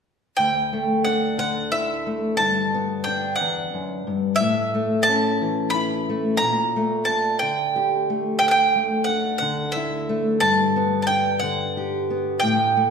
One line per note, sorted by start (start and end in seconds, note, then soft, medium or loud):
0.37 2.39 D2 medium
0.37 1.04 G5 medium
0.73 2.05 A3 medium
1.05 2.35 D4 soft
1.05 1.38 F#5 medium
1.38 4.39 D3 medium
1.38 1.73 F#5 medium
1.72 2.39 E4 medium
1.72 2.41 E5 medium
2.07 2.35 A3 soft
2.37 3.40 G2 medium
2.37 3.04 A5 medium
2.74 4.37 B3 medium
3.04 4.36 D4 soft
3.04 3.35 G5 medium
3.36 4.09 F#5 medium
3.40 3.73 E2 medium
3.74 4.07 F#2 medium
4.07 4.40 G2 medium
4.36 5.07 E5 medium
4.40 6.41 A2 medium
4.74 6.09 A3 medium
5.03 5.68 A5 medium
5.08 6.37 C#4 medium
5.42 6.37 E3 medium
5.70 6.37 B5 medium
5.74 6.41 E4 medium
6.09 6.45 A3 soft
6.37 7.05 A#5 medium
6.42 7.41 A#2 medium
6.76 8.09 A3 medium
7.05 9.08 D4 soft
7.05 7.39 A5 medium
7.39 9.41 D3 medium
7.39 8.11 G5 medium
7.76 8.38 G4 medium
8.10 8.38 A3 soft
8.39 10.41 D2 medium
8.39 8.47 G5 medium
8.48 8.51 F#5 medium
8.48 9.04 G5 medium
8.76 10.08 A3 medium
9.04 9.37 F#5 medium
9.09 10.38 D4 soft
9.38 11.41 D3 medium
9.38 9.74 F#5 medium
9.72 10.42 E4 medium
9.72 10.42 E5 medium
10.09 10.38 A3 medium
10.40 12.38 G2 medium
10.40 11.01 A5 medium
10.76 12.09 B3 medium
11.02 11.06 A5 medium
11.07 12.39 D4 soft
11.07 11.39 G5 medium
11.39 12.43 D3 medium
11.39 12.12 F#5 medium
11.77 12.39 G4 medium
12.10 12.39 B3 soft
12.40 12.90 A2 medium
12.40 12.90 G5 medium
12.77 12.90 A3 medium